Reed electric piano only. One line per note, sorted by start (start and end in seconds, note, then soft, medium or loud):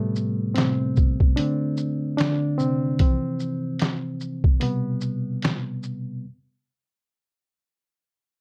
0.00 0.53 A2 medium
0.00 0.56 C3 medium
0.00 1.34 G3 medium
0.00 0.58 A3 medium
0.00 1.34 B3 medium
0.55 1.34 C3 medium
0.55 1.38 C4 medium
1.36 2.15 D3 medium
1.36 1.95 A3 medium
1.36 1.95 C4 medium
1.36 2.16 D4 medium
2.17 2.38 D3 medium
2.17 2.36 D4 medium
2.58 4.59 C3 medium
2.58 3.00 C4 medium
3.00 4.58 E3 medium
3.00 4.58 F3 soft
3.00 4.59 C4 medium
4.60 5.80 B2 medium
4.60 5.19 C3 medium
4.60 5.19 G3 soft
4.60 4.62 B3 medium
4.60 5.19 B3 medium